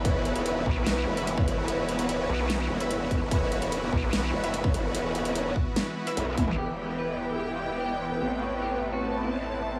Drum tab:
HH |x-xxx---x--xx-x-|x-xxx---x--xx-x-|x-xxx---x--xx-x-|x-xxx---x--xx-x-|
SD |--------o-------|--------o-------|--------o-------|--------o-------|
T1 |----------------|----------------|----------------|--------------o-|
T2 |----------------|----------------|----------------|---------------o|
BD |o-----o------o--|--------------o-|o-----o------o--|------o-------o-|

HH |----------------|----------------|
SD |----------------|----------------|
T1 |----------------|----------------|
T2 |----------------|----------------|
BD |----------------|----------------|